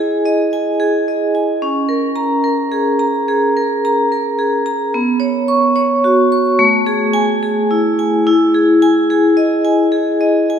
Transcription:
Already playing: E4 G#4 D#5 G#5
0.26 D#5
0.53 G#5
0.80 G#4
1.08 D#5
1.35 G#5
1.62 C#4
1.89 A#4
2.16 A#5
2.44 A#4
2.72 G#4
2.99 A#5
3.28 G#4
3.57 A#4
3.85 A#5
4.12 A#4
4.39 G#4
4.66 A#5
4.94 B3
5.20 C#5
5.48 C#6
5.76 C#5
6.04 F#4
6.32 C#6
6.59 A3
6.86 G#4
7.13 G#5
7.43 G#4
7.71 E4
7.99 G#5
8.27 E4
8.55 G#4
8.82 G#5
9.10 G#4
9.37 D#5
9.65 G#5
9.92 G#4
10.21 D#5
10.50 G#5

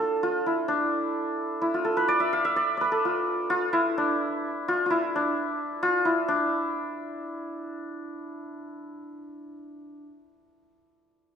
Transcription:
Already playing: D4 F4
0.00 A4
0.23 F4
0.46 E4
0.68 D4
1.62 E4
1.74 F4
1.85 A4
1.97 B4
2.08 D5
2.20 E5
2.33 F5
2.45 E5
2.56 D5
2.77 B4 D5
2.92 A4
3.05 F4
3.50 F4
3.73 E4
3.98 D4
4.68 F4
4.86 F4
4.90 E4
5.16 D4
5.83 F4
6.05 E4
6.28 D4

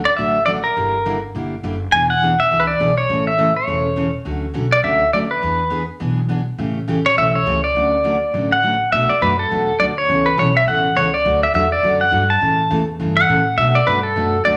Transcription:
0.05 D5
0.17 A1 D3 F#3 A3 D4 F#4 E5
0.46 D3 F#3 A3 D4 F#4 D5
0.64 A#4
0.76 G1 D3 G3 A#3 E4 G4
1.05 D3 G3 A#3 E4 G4
1.35 G1 D3 G3 A#3 E4 G4
1.63 F#1 D3 G3 A#3 E4 G4
1.92 E1 E3 B3 D4 G#4 G#5
2.10 F#5
2.22 E3 B3 D4 G#4
2.40 E5
2.51 C#2 E3 B3 D4 G#4
2.60 B4
2.67 D5
2.80 B1 E3 B3 D4 G#4
2.98 C#5
3.09 A1 C#3 E3 A3 C#4 A4
3.27 E5
3.38 C#3 E3 A3 C#4 A4
3.56 C#5
3.67 E1 C#3 E3 A3 C#4 A4
3.96 C#3 E3 A3 C#4 A4
4.25 D2 D3 F#3 A3 C#4 F#4
4.54 B1 D3 F#3 A3 C#4 F#4
4.72 D5
4.83 C#2 D3 F#3 A3 C#4 F#4 E5
5.13 D2 D3 F#3 A3 C#4 F#4 D5
5.31 B4
5.42 E2 E3 B3 D4 G#4
5.70 E3 B3 D4 G#4
6.00 B1 E3 B3 D4 G#4
6.29 E3 B3 D4 G#4
6.58 A1 C#3 E3 A3 C#4 G4
6.88 A1 C#3 E3 A3 C#4 G4
7.06 C#5
7.16 B1 C#3 E3 A3 C#4 G4 E5
7.35 C#5
7.46 C#2 C#3 E3 A3 C#4 G4
7.64 D5
7.75 D2 D3 F#3 A3 C#4 F#4
8.04 D3 F#3 A3 C#4 F#4
8.34 A1 D3 F#3 A3 C#4 F#4
8.52 F#5
8.63 D3 F#3 A3 C#4 F#4
8.92 B1 B2 F#3 A3 D4 F#4 E5
9.09 D5, muted upright bass stroke
9.21 F#2 B2 F#3 A3 D4 F#4 B4
9.39 A4
9.50 E2 B2 F#3 A3 D4 F#4
9.79 D2 B2 F#3 A3 D4 F#4 D5
9.98 C#5
10.08 C#2 C#3 E3 B3 C#4 A4
10.26 B4
10.37 B1 C#3 E3 B3 C#4 A4 C#5
10.57 E5
10.67 A1 C#3 E3 B3 C#4 A4 F#5
10.96 C#2 C#3 E3 B3 C#4 A4 C#5
11.14 D5
11.25 D2 D3 F#3 A3 D4 F#4
11.43 E5
11.54 E2 D3 F#3 A3 D4 F#4 E5
11.72 D5
11.83 F#2 D3 F#3 A3 D4 F#4
12.01 F#5
12.11 G2 D3 F#3 A3 D4 F#4
12.30 A5
12.41 A2 C#3 E3 A3 C#4 A4
12.70 E2 C#3 E3 A3 C#4 A4
13.00 G2 C#3 E3 A3 C#4 A4
13.17 F#5
13.29 A2 C#3 E3 A3 C#4 A4
13.58 B2 F#3 A3 D4 F#4 E5
13.75 D5
13.87 G2 B2 F#3 A3 D4 F#4 B4
14.03 A4
14.16 F#2 B2 F#3 A3 D4 F#4
14.45 D2 B2 F#3 A3 D4 F#4 D5

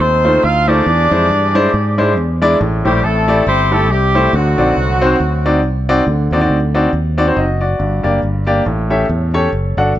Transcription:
0.00 D#2 C4 D#4 A4 C5
0.24 A3 D#4 F4 C5
0.44 D2 F4 F5
0.67 A3 D4 D#4 F4 G4 G#4 C5 D5
0.86 E2 E3
1.11 F2 G#3 D4 E4 C5
1.30 G2
1.55 G#3 D4 E4 C5
1.74 G#2
1.98 G#3 D4 E4 C5
2.17 E2
2.42 G#3 D4 E4 D5
2.60 A1 A2
2.85 A#1 G3 A3 E4 G4 C5
3.03 A1 A3 C4 E4 A4
3.28 A3 E4 G4 D5
3.47 G1 C4 E4 G4 C5
3.71 A3 E4 G4 A4
3.90 C2 G3 C4 E4 G4
4.15 A3 E4 G4 C5
4.33 D2 D3 F#3 A3 C4 F#4
4.58 A#1 C4 D#4 F#4 D5
4.76 C2
5.01 C4 D#4 F#4 C5
5.20 D2
5.46 C4 D#4 F#4 D5
5.63 C2
5.89 C4 D#4 F#4 D5
6.07 D2 D3
6.31 D#2 C4 D#4 F#4 D5
6.41 C4 D#4 F#4 D5
6.50 D2
6.75 C4 D#4 F#4 D5
6.93 D#2
7.18 C4 D#4 F#4 D5
7.27 C4 D#4 F#4 C5
7.37 F#1 F#4 D#5
7.61 F#4 D5
7.79 G1 G2
8.03 F#1 A#3 D4 G4 D5
8.23 G1
8.47 A#3 D4 G4 D5
8.66 A1 A2
8.90 C#4 G4 A4 E5
9.09 E2
9.34 C#4 G4 A4 C#5
9.53 F#1
9.77 G1 D4 F#4 A4 F#5
9.95 A1

